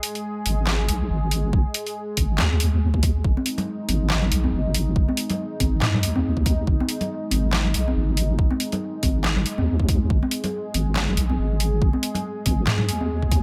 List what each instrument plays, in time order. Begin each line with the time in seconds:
Already playing: analog synth pad G#3 G#4
0.03 closed hi-hat
0.15 closed hi-hat
0.46 wobble bass G#1, closed hi-hat
0.67 snare, clap
0.89 wobble bass B1, closed hi-hat
1.10 wobble bass G#1
1.31 closed hi-hat
1.53 wobble bass G#1, kick
1.74 closed hi-hat
1.86 closed hi-hat
2.17 wobble bass G#1, kick, closed hi-hat
2.38 wobble bass D#2, snare, clap
2.60 closed hi-hat
2.94 kick
3.03 kick, closed hi-hat
3.24 wobble bass G#1, analog synth pad G#3 D#4, kick
3.37 high conga
3.46 closed hi-hat
3.58 closed hi-hat, low conga
3.88 wobble bass G#1, closed hi-hat, high conga
4.10 snare, clap
4.22 low conga
4.32 wobble bass B1, closed hi-hat
4.44 high conga
4.53 wobble bass G#1
4.74 closed hi-hat
4.96 wobble bass G#1, kick
5.08 high conga
5.17 closed hi-hat
5.30 closed hi-hat, low conga
5.60 wobble bass G#1, kick, closed hi-hat, high conga
5.82 wobble bass G#2, snare, clap
5.94 low conga
6.03 wobble bass D#2, closed hi-hat
6.16 high conga
6.37 kick
6.46 kick, closed hi-hat
6.67 wobble bass G#1, kick
6.80 high conga
6.89 closed hi-hat
7.01 closed hi-hat, low conga
7.31 wobble bass G#1, closed hi-hat, high conga
7.53 snare, clap
7.64 low conga
7.74 wobble bass B1, closed hi-hat
7.88 high conga
7.96 wobble bass G#1
8.17 closed hi-hat
8.39 wobble bass G#1, kick
8.51 high conga
8.60 closed hi-hat
8.72 closed hi-hat, low conga
9.03 wobble bass G#1, kick, closed hi-hat, high conga
9.24 snare, clap
9.36 low conga
9.46 closed hi-hat
9.58 wobble bass D#2, high conga
9.80 kick
9.89 kick, closed hi-hat
10.10 wobble bass G#1, analog synth pad G#4, kick
10.23 high conga
10.31 closed hi-hat
10.44 closed hi-hat, low conga
10.74 wobble bass G#1, closed hi-hat, high conga
10.96 snare, clap
11.09 low conga
11.17 wobble bass B1, closed hi-hat
11.30 high conga
11.39 wobble bass G#1
11.60 closed hi-hat
11.82 wobble bass G#1, kick
11.93 high conga
12.03 closed hi-hat
12.15 closed hi-hat, low conga
12.46 wobble bass G#1, kick, closed hi-hat, high conga
12.67 wobble bass G#2, snare, clap
12.78 low conga
12.89 wobble bass D#2, closed hi-hat
13.01 high conga
13.22 kick
13.32 kick, closed hi-hat